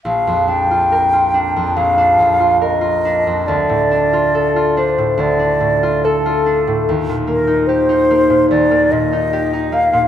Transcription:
<<
  \new Staff \with { instrumentName = "Flute" } { \time 4/4 \key bes \major \tempo 4 = 71 f''8 g''4. f''4 ees''4 | d''4. c''8 d''4 a'4 | r8 bes'8 c''4 d''8 ees''4 f''8 | }
  \new Staff \with { instrumentName = "Harp" } { \time 4/4 \key bes \major bes,,16 f,16 d'16 f'16 bes'16 f'16 d'16 f,16 bes,,16 d'16 f,16 f'16 bes'16 f'16 d'16 f,16 | d,16 a,16 d'16 f'16 a'16 f'16 d'16 a,16 d,16 d'16 a,16 f'16 a'16 f'16 d'16 a,16 | ees,16 bes,16 bes16 ees'16 g'16 ees'16 bes16 bes,16 ees,16 bes16 bes,16 ees'16 g'16 ees'16 bes16 bes,16 | }
>>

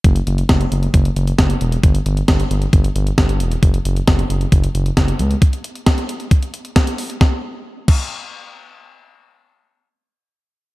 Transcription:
<<
  \new Staff \with { instrumentName = "Analog synth bass" } { \clef bass \time 4/4 \key fis \mixolydian \tempo 4 = 134 fis,,8 fis,,8 fis,,8 fis,,8 fis,,8 fis,,8 fis,,8 e,,8 | g,,8 g,,8 g,,8 g,,8 g,,8 g,,8 g,,8 e,,8 | fis,,8 fis,,8 fis,,8 fis,,8 fis,,8 fis,,8 fis,,8 cis,8 | r1 |
r1 | r1 | }
  \new DrumStaff \with { instrumentName = "Drums" } \drummode { \time 4/4 <hh bd>16 hh16 hh16 hh16 <hh bd sn>16 hh16 hh16 hh16 <hh bd>16 hh16 hh16 hh16 <hh bd sn>16 hh16 hh16 hh16 | <hh bd>16 hh16 hh16 hh16 <hh bd sn>16 hh16 hh16 hh16 <hh bd>16 hh16 hh16 hh16 <hh bd sn>16 hh16 hh16 hh16 | <hh bd>16 hh16 hh16 hh16 <hh bd sn>16 hh16 hh16 hh16 <hh bd>16 hh16 hh16 hh16 <hh bd sn>16 hh16 hh16 hh16 | <hh bd>16 hh16 hh16 hh16 <hh bd sn>16 hh16 hh16 hh16 <hh bd>16 hh16 hh16 hh16 <hh bd sn>16 hh16 hho16 hh16 |
<bd sn>4 r8 <cymc bd>8 r4 r4 | r4 r4 r4 r4 | }
>>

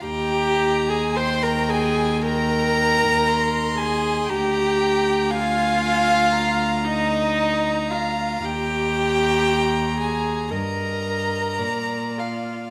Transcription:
<<
  \new Staff \with { instrumentName = "Violin" } { \time 4/4 \key ees \major \tempo 4 = 57 bes''4 g''4 g''4 c'''4 | bes''4 aes''8 aes''8 bes''4 bes''4 | bes''2 ees''4 d''4 | }
  \new Staff \with { instrumentName = "Violin" } { \time 4/4 \key ees \major g''8. aes''16 c'''16 bes''16 aes''8 bes''4. aes''8 | g''4 f''4. ees''4 f''8 | g''4. aes''8 bes''4. f''8 | }
  \new Staff \with { instrumentName = "Viola" } { \time 4/4 \key ees \major g'8. aes'16 c''16 bes'16 aes'8 bes'4. aes'8 | g'4 f'4. ees'4 f'8 | g'4. aes'8 bes'4. f'8 | }
  \new Staff \with { instrumentName = "Cello" } { \clef bass \time 4/4 \key ees \major ees,1 | d,1 | ees,2 g,4 bes,4 | }
>>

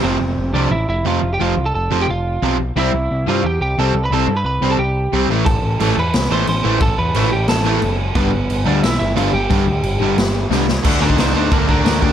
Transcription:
<<
  \new Staff \with { instrumentName = "Lead electric guitar" } { \time 4/4 \key f \lydian \tempo 4 = 178 <c' c''>4. <d' d''>8 <e' e''>8 <e' e''>8 <f' f''>8. <g' g''>16 | <f' f''>8. <a' a''>16 <a' a''>8. <g' g''>16 <f' f''>4. r8 | <e' e''>4. <f' f''>8 <g' g''>8 <g' g''>8 <a' a''>8. <b' b''>16 | <a' a''>8. <b' b''>16 <b' b''>8. <a' a''>16 <g' g''>4. r8 |
<a' a''>4. <b' b''>4 <c'' c'''>8 <c'' c'''>4 | <a' a''>8 <b' b''>4 <g' g''>8 <a' a''>4. r8 | <b b'>4. <d' d''>8 <e' e''>8 <e' e''>8 <f' f''>8 <g' g''>8~ | <g' g''>2. r4 |
r8 <ees' c''>8 <ees' c''>8 <ees' c''>8 <d' bes'>8 <d' bes'>8 <d' bes'>8 <bes g'>8 | }
  \new Staff \with { instrumentName = "Overdriven electric guitar" } { \clef bass \time 4/4 \key f \lydian <f, c f>8 r4 <f, c f>8 r4 <f, c f>8 r8 | <f, c f>8 r4 <f, c f>8 r4 <f, c f>8 r8 | <c g c'>8 r4 <c g c'>8 r4 <c g c'>8 r8 | <c g c'>8 r4 <c g c'>8 r4 <c g c'>8 <a, e a>8 |
r4 <a, e a>8 r4 <a, e a>8 r8 <a, e a>8 | r4 <a, e a>8 r4 <a, e a>8 r4 | <g, d g>8 r4 <g, d g>8 r4 <g, d g>8 r8 | <g, d g>8 r4 <g, d g>8 r4 <g, d g>8 r8 |
<d a d'>8 <d a d'>8 <d a d'>8 <d a d'>8 <d a d'>8 <d a d'>8 <d a d'>8 <d a d'>8 | }
  \new Staff \with { instrumentName = "Overdriven electric guitar" } { \clef bass \time 4/4 \key f \lydian <f, c f>8 r4 <f, c f>8 r4 <f, c f>8 r8 | <f, c f>8 r4 <f, c f>8 r4 <f, c f>8 r8 | <c g c'>8 r4 <c g c'>8 r4 <c g c'>8 r8 | <c g c'>8 r4 <c g c'>8 r4 <c g c'>8 <a, e a>8 |
r4 <a, e a>8 r4 <a, e a>8 r8 <a, e a>8 | r4 <a, e a>8 r4 <a, e a>8 r4 | <g, d g>8 r4 <g, d g>8 r4 <g, d g>8 r8 | <g, d g>8 r4 <g, d g>8 r4 <g, d g>8 r8 |
<d a d'>8 <d a d'>8 <d a d'>8 <d a d'>8 <d a d'>8 <d a d'>8 <d a d'>8 <d a d'>8 | }
  \new Staff \with { instrumentName = "Picked electric bass" } { \clef bass \time 4/4 \key f \lydian f,,8 f,,8 f,,8 c,8 a,,8 f,,8 f,,8 f,,8 | f,,8 c,8 f,,8 f,,8 f,,4 b,,4 | c,8 c,8 c,8 g,8 e,8 c,8 c,8 c,8 | c,8 g,8 c,8 c,8 c,4 c,8 a,,8 |
a,,8 a,,8 a,,8 e,8 c,8 a,,8 a,,8 a,,8 | a,,8 e,8 a,,8 a,,8 a,,4 fis,,4 | g,,8 g,,8 g,,8 d,8 b,,8 g,,8 g,,8 g,,8 | g,,8 d,8 g,,8 r8 g,,4 c,4 |
d,8 d,8 c,8 d,8 d,8 d,8 d,8 d,8 | }
  \new DrumStaff \with { instrumentName = "Drums" } \drummode { \time 4/4 r4 r4 r4 r4 | r4 r4 r4 r4 | r4 r4 r4 r4 | r4 r4 r4 r4 |
<cymc bd>4 cymc4 <cymc sn>4 cymc4 | <cymc bd>4 cymc4 <cymc sn>4 cymc4 | <cymc bd>4 cymc4 <cymc sn>4 cymc4 | <cymc bd>4 cymc4 <cymc sn>4 sn8 sn8 |
<cymc bd>8. bd16 <cymc sn>4 <cymc bd>8 bd8 <cymc sn>8 bd8 | }
>>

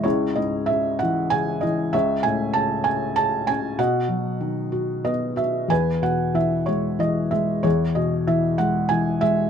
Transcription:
<<
  \new Staff \with { instrumentName = "Felt piano" } { \time 3/4 \key e \major \tempo 4 = 95 << { cis''8 dis''8 e''8 fis''8 gis''8 dis''8 | e''8 gis''8 a''8 gis''8 a''8 gis''8 | fis''2 dis''8 e''8 | gis''8 fis''8 e''8 cis''8 dis''8 e''8 |
cis''8 dis''8 e''8 fis''8 gis''8 e''8 | } \\ { e'4. r4. | cis''4. r4. | dis''2 r4 | b'4. r4. |
gis'4. r4. | } >> }
  \new Staff \with { instrumentName = "Felt piano" } { \clef bass \time 3/4 \key e \major cis,8 gis,8 cis8 e8 cis8 e8 | cis,8 a,8 cis8 cis'8 cis8 cis'8 | b,8 fis8 dis8 fis'8 b8 fis'8 | e,8 b,8 e8 gis8 e8 gis8 |
e,8 b,8 e8 gis8 e8 gis8 | }
>>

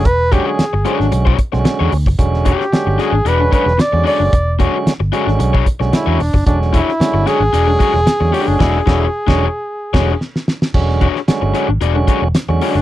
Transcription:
<<
  \new Staff \with { instrumentName = "Flugelhorn" } { \time 4/4 \key e \mixolydian \tempo 4 = 112 b'8 g'16 gis'4 r2 r16 | r8 g'4 gis'8 b'8 b'8 d''8 d''8~ | d''8 r2 r8 e'8 d'8 | d'8 e'4 gis'2 g'16 gis'16~ |
gis'2. r4 | r1 | }
  \new Staff \with { instrumentName = "Overdriven electric guitar" } { \time 4/4 \key e \mixolydian r8 <d' fis' gis' cis''>16 r8. <d' fis' gis' cis''>8 r16 <d' fis' gis' cis''>8 r8 <d' fis' gis' cis''>16 r8 | r8 <d' fis' gis' cis''>16 r8. <d' fis' gis' cis''>16 r16 <d' fis' gis' d''>16 r16 <d' fis' gis' cis''>16 r8. <d' fis' gis' d''>16 r16 | r8 <d' fis' gis' cis''>16 r8. <d' fis' gis' cis''>16 r8 <d' fis' gis' cis''>16 r8. <d' fis' gis' cis''>16 r8 | r8 <d' fis' gis' cis''>16 r8. <d' fis' gis' cis''>16 r16 <d' fis' gis' d''>16 r16 <d' fis' gis' cis''>16 r8. <d' fis' gis' d''>8 |
<d' fis' gis' d''>8 <d' fis' gis' cis''>8 r16 <d' fis' gis' cis''>8 r8. <d' fis' gis' cis''>8 r4 | r8 <d' fis' gis' cis''>16 r8. <d' fis' gis' cis''>16 r16 <d' fis' gis' d''>16 r16 <d' fis' gis' cis''>16 r8. <d' fis' gis' d''>8 | }
  \new Staff \with { instrumentName = "Tonewheel organ" } { \clef bass \time 4/4 \key e \mixolydian r8 <d fis gis cis'>8. r16 <d fis gis cis'>8. r8 <d fis gis c' cis'>8. r8 | <d fis gis cis'>8. r16 <d fis gis cis'>8. r8 <d fis gis cis'>8. r16 <d fis gis cis'>8. | r8 <d fis gis cis'>8. r16 <d fis gis cis'>8. r8 <d fis gis cis'>8. r8 | <d fis gis cis'>8. r16 <d fis gis cis'>8. r8 <d fis gis cis'>8. r16 <d fis gis cis'>8. |
<d fis gis e'>8 <d fis gis e'>8 r16 <d fis gis cis'>8 r8. <d fis gis cis'>8 r4 | <d fis gis cis'>8. r16 <d fis gis cis'>8. r8 <d fis gis cis'>8. r16 <d fis gis cis'>8. | }
  \new Staff \with { instrumentName = "Fingered electric bass" } { \clef bass \time 4/4 \key e \mixolydian e,,8. r8 g,,16 r16 gis,,16 b,,8 r16 b,,16 r16 e,16 d,16 fis,,16 | e,,8. r8 g,,16 r16 gis,,16 e,,8 r16 e,,16 r16 e,16 r16 fis,,16 | e,,8. r8 g,,16 r16 gis,,16 b,,8 r16 b,,16 r16 e,16 e,,16 fis,,16 | e,,8. r8 g,,16 r16 gis,,16 e,,8 r16 e,,16 r16 e,16 r16 fis,,16 |
e,,8 e,,8 r16 e,,8 r8. e,,8 r4 | e,,8. r8 g,,16 r16 gis,,16 e,,8 r16 e,,16 r16 e,16 r16 fis,,16 | }
  \new DrumStaff \with { instrumentName = "Drums" } \drummode { \time 4/4 <hh bd>8 <hh bd>8 <hh sn>8 hh16 sn16 hh16 bd16 <hh bd>16 sn16 <hh sn>8 hho16 bd16 | <hh bd>16 sn16 <hh bd>16 sn16 <hh sn>8 <hh sn>8 hh8 <hh bd>16 sn16 <hh sn>8 hho8 | <hh bd>8 <hh bd>8 <hh sn>8 hh16 sn16 hh16 bd16 <hh bd>16 sn16 <hh sn>8 hho16 bd16 | <hh bd>16 sn16 <hh bd>16 sn16 <hh sn>8 <hh sn>8 hh8 <hh bd>16 sn16 <hh sn>8 hho8 |
<cymc bd sn>8 <bd sn>8 r16 <bd sn>8. r8 <cymc bd sn>8 sn16 sn16 sn16 sn16 | <cymc bd>16 sn16 <hh bd>16 sn16 <hh sn>8 <hh sn>8 hh8 <hh bd>8 <hh sn>8 <hho sn>8 | }
>>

